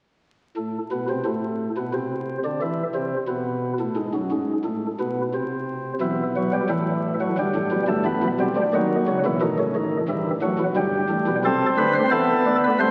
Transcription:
0.57 0.78 A2 medium
0.92 1.06 B2 medium
1.09 1.24 C3 medium
1.25 1.70 A2 medium
1.77 1.92 B2 medium
1.94 2.38 C3 medium
2.45 2.60 D3 medium
2.62 2.83 E3 medium
2.95 3.16 C3 medium
3.28 3.73 B2 medium
3.80 3.95 A2 medium
3.96 4.12 G#2 medium
4.14 4.30 F#2 medium
4.32 4.53 G#2 medium
4.65 4.87 A2 medium
5.00 5.22 B2 medium
5.34 5.93 C3 medium
6.01 6.61 B1 medium
6.01 6.60 B2 medium
6.01 6.23 E3 medium
6.36 6.51 F#3 medium
6.53 6.68 G3 medium
6.70 7.29 A1 medium
6.70 7.28 A2 medium
6.70 7.14 E3 medium
7.21 7.36 F#3 medium
7.38 7.53 G1 medium
7.38 7.54 G2 medium
7.38 7.83 G3 medium
7.55 7.70 A1 medium
7.55 7.70 A2 medium
7.72 7.87 B1 medium
7.72 7.87 B2 medium
7.88 8.04 G1 medium
7.88 8.04 G2 medium
7.88 8.04 A3 medium
8.05 8.21 A1 medium
8.05 8.21 A2 medium
8.05 8.27 B3 medium
8.23 8.38 B1 medium
8.23 8.38 B2 medium
8.40 8.55 C2 medium
8.40 8.55 C3 medium
8.40 8.61 G3 medium
8.57 8.72 D2 medium
8.57 8.72 D3 medium
8.74 8.96 D#2 medium
8.74 8.95 D#3 medium
8.74 9.19 F#3 medium
9.08 9.23 C#2 medium
9.08 9.23 C#3 medium
9.25 9.40 B1 medium
9.25 9.40 B2 medium
9.25 9.40 E3 medium
9.42 10.00 A1 medium
9.42 10.01 A2 medium
9.42 9.57 D#3 medium
9.59 9.74 C#3 medium
9.76 9.97 D#3 medium
10.09 10.30 G1 medium
10.09 10.30 G2 medium
10.09 10.30 E3 medium
10.42 10.58 A1 medium
10.42 10.58 A2 medium
10.42 10.64 F#3 medium
10.59 10.74 B1 medium
10.59 10.75 B2 medium
10.76 10.98 G1 medium
10.76 10.98 G2 medium
10.76 11.35 G3 medium
11.10 11.25 A1 medium
11.10 11.25 A2 medium
11.27 11.42 B1 medium
11.27 11.43 B2 medium
11.45 11.66 C2 medium
11.45 11.66 C3 medium
11.45 12.03 C4 medium
11.45 11.66 A4 medium
11.78 11.99 D2 medium
11.78 11.99 D3 medium
11.78 11.93 B4 medium
11.95 12.10 C5 medium
12.11 12.33 E2 medium
12.11 12.33 E3 medium
12.11 12.70 B3 medium
12.11 12.55 A4 medium
12.46 12.67 D2 medium
12.46 12.67 D3 medium
12.64 12.78 B4 medium
12.80 12.91 C2 medium
12.80 12.91 C3 medium
12.80 12.91 A3 medium
12.80 12.91 C5 medium

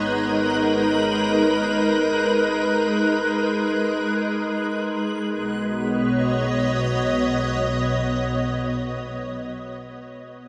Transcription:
0.00 5.25 G#1 medium
0.00 5.31 G#3 medium
0.00 0.12 B3 medium
0.00 5.31 D#4 medium
0.00 5.29 B4 medium
0.00 5.32 F#6 medium
0.08 5.30 A#4 medium
5.30 9.48 B1 medium
5.30 9.50 B2 medium
5.49 9.65 B3 medium
5.68 9.66 C#5 medium
5.87 9.66 D#5 medium

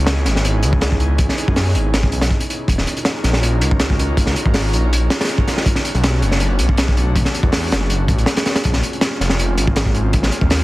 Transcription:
0.00 0.27 C#2 medium
0.00 0.98 B3 loud
0.00 0.98 C#4 medium
0.00 0.98 D#4 medium
0.00 0.98 E4 medium
0.00 0.98 G#4 loud
0.06 snare medium
0.06 closed hi-hat medium
0.25 0.65 G#1 loud
0.25 snare soft
0.25 closed hi-hat medium
0.36 snare soft
0.45 closed hi-hat medium
0.63 1.27 C#2 medium
0.63 closed hi-hat medium
0.73 kick medium
0.81 snare loud
0.81 closed hi-hat medium
0.92 kick medium
1.00 closed hi-hat medium
1.18 2.20 B3 loud
1.18 2.20 C#4 medium
1.18 2.20 D#4 medium
1.18 2.20 E4 medium
1.18 2.20 G#4 loud
1.18 kick loud
1.18 closed hi-hat medium
1.29 snare soft
1.38 closed hi-hat medium
1.48 1.77 F#2 medium
1.48 kick medium
1.56 snare loud
1.56 open hi-hat medium
1.75 2.11 G#1 loud
1.75 closed hi-hat medium
1.94 snare medium
1.94 closed hi-hat medium
2.03 kick medium
2.12 2.29 B1 loud
2.12 closed hi-hat medium
2.21 snare medium
2.21 closed hi-hat medium
2.31 kick medium
2.40 closed hi-hat medium
2.50 closed hi-hat medium
2.68 2.85 D#1 medium
2.68 3.97 C#4 loud
2.68 3.97 D#4 medium
2.68 3.97 F4 medium
2.68 3.97 F#4 medium
2.68 3.97 A#4 loud
2.68 kick loud
2.68 closed hi-hat medium
2.78 snare soft
2.87 closed hi-hat medium
2.97 closed hi-hat soft
3.05 snare loud
3.05 closed hi-hat medium
3.24 3.63 A#1 loud
3.24 snare soft
3.24 closed hi-hat medium
3.33 snare soft
3.43 closed hi-hat medium
3.61 4.35 C#2 medium
3.61 closed hi-hat medium
3.71 kick medium
3.79 snare loud
3.79 closed hi-hat medium
3.90 kick medium
3.99 closed hi-hat medium
4.17 5.18 C#4 loud
4.17 5.18 D#4 medium
4.17 5.18 F4 medium
4.17 5.18 F#4 medium
4.17 5.18 A#4 loud
4.17 kick medium
4.17 closed hi-hat medium
4.26 snare medium
4.36 closed hi-hat medium
4.45 4.75 G#1 medium
4.45 kick medium
4.54 snare loud
4.54 open hi-hat medium
4.73 5.09 A#1 loud
4.73 closed hi-hat medium
4.93 closed hi-hat medium
5.10 snare medium
5.10 closed hi-hat medium
5.21 snare medium
5.21 closed hi-hat medium
5.25 snare medium
5.25 closed hi-hat medium
5.29 closed hi-hat medium
5.38 kick medium
5.47 snare soft
5.47 closed hi-hat medium
5.57 snare soft
5.66 6.95 A3 loud
5.66 6.95 B3 loud
5.66 6.95 C#4 medium
5.66 6.95 D4 loud
5.66 6.95 F#4 loud
5.66 kick loud
5.66 closed hi-hat medium
5.75 snare soft
5.85 closed hi-hat medium
5.94 6.24 B1 medium
5.94 closed hi-hat soft
6.04 snare loud
6.04 closed hi-hat medium
6.22 6.61 F#1 loud
6.22 closed hi-hat medium
6.32 snare soft
6.40 closed hi-hat medium
6.59 7.24 B1 medium
6.59 closed hi-hat medium
6.69 kick medium
6.77 snare loud
6.77 closed hi-hat medium
6.88 kick medium
6.97 closed hi-hat medium
7.15 8.16 A3 loud
7.15 8.16 B3 medium
7.15 8.16 C#4 loud
7.15 8.16 D4 medium
7.15 8.16 F#4 loud
7.15 kick loud
7.15 closed hi-hat medium
7.25 snare medium
7.34 closed hi-hat medium
7.43 7.73 E2 medium
7.43 kick medium
7.52 snare loud
7.52 open hi-hat medium
7.71 8.07 F#1 loud
7.71 snare medium
7.71 closed hi-hat medium
7.90 closed hi-hat medium
8.08 8.25 A1 medium
8.08 kick medium
8.08 closed hi-hat medium
8.18 closed hi-hat soft
8.26 snare medium
8.26 closed hi-hat medium
8.37 snare loud
8.37 closed hi-hat medium
8.46 snare loud
8.46 closed hi-hat medium
8.56 snare loud
8.56 closed hi-hat medium
8.64 8.82 A#1 medium
8.64 9.93 G#3 loud
8.64 9.93 A#3 medium
8.64 9.93 C4 medium
8.64 9.93 C#4 medium
8.64 9.93 F4 loud
8.64 kick loud
8.64 closed hi-hat medium
8.73 snare soft
8.83 closed hi-hat medium
8.93 closed hi-hat soft
9.01 snare loud
9.01 closed hi-hat medium
9.20 9.59 F1 loud
9.20 snare soft
9.20 closed hi-hat medium
9.29 snare soft
9.39 closed hi-hat medium
9.57 10.31 G#1 medium
9.57 closed hi-hat medium
9.67 kick medium
9.76 snare loud
9.76 closed hi-hat medium
9.86 kick medium
9.95 closed hi-hat medium
10.13 10.64 G#3 loud
10.13 10.64 A#3 medium
10.13 10.64 C4 medium
10.13 10.64 C#4 medium
10.13 10.64 F4 loud
10.13 kick loud
10.13 closed hi-hat medium
10.23 snare medium
10.32 closed hi-hat medium
10.41 10.64 D#2 medium
10.41 kick medium
10.50 snare loud
10.50 open hi-hat medium

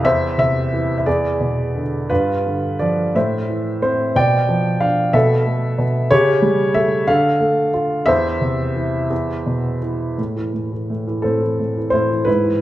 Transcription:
0.03 1.03 E2 medium
0.03 1.03 C5 medium
0.03 0.37 E5 loud
0.38 1.04 C3 soft
0.38 0.96 E5 medium
0.73 1.05 E3 soft
0.98 1.05 E5 medium
1.06 2.08 E2 medium
1.06 2.07 G#4 medium
1.06 1.80 D5 medium
1.40 2.09 B2 soft
1.76 2.10 D3 soft
2.10 3.12 G2 medium
2.10 3.11 F4 medium
2.10 2.76 B4 medium
2.46 3.13 D3 soft
2.79 3.14 F3 soft
2.79 3.16 D5 medium
3.15 4.12 A2 medium
3.15 3.81 C5 medium
3.15 3.79 E5 medium
3.49 4.13 E3 soft
3.82 4.14 C4 soft
3.82 4.16 C5 medium
4.15 5.11 B2 medium
4.15 5.11 D5 medium
4.15 4.84 G5 medium
4.49 5.12 F3 soft
4.80 5.13 D4 medium
4.80 5.15 F5 medium
5.13 5.77 B2 medium
5.13 6.08 A4 medium
5.13 5.83 E5 medium
5.45 6.09 A3 soft
5.78 6.10 B2 medium
6.11 7.05 C#3 medium
6.11 7.05 G4 medium
6.11 6.77 C#5 loud
6.42 7.06 G3 soft
6.74 7.07 A3 medium
6.74 7.05 E5 medium
7.07 8.04 D3 medium
7.07 8.04 A4 medium
7.07 7.70 F5 medium
7.40 8.05 A3 medium
7.74 8.06 F4 medium
8.06 9.07 E2 medium
8.06 9.79 C5 medium
8.06 9.77 E5 loud
8.41 9.09 C3 soft
8.75 9.10 E3 soft
9.10 10.15 E2 medium
9.46 10.16 B2 soft
9.82 10.17 E3 soft
10.18 10.52 A2 soft
10.36 10.71 E3 soft
10.53 10.88 A2 soft
10.72 11.06 E3 soft
10.90 11.23 A2 soft
11.07 11.40 E3 soft
11.22 11.58 A2 soft
11.22 11.89 C4 soft
11.22 11.88 A4 medium
11.42 11.76 E3 soft
11.60 11.92 A2 soft
11.77 12.09 E3 soft
11.90 12.26 A2 soft
11.90 12.25 E4 medium
11.90 12.27 C5 medium
12.11 12.27 E3 soft
12.25 12.61 G#2 medium
12.25 12.61 E4 medium
12.25 12.61 B4 medium
12.44 12.61 E3 soft

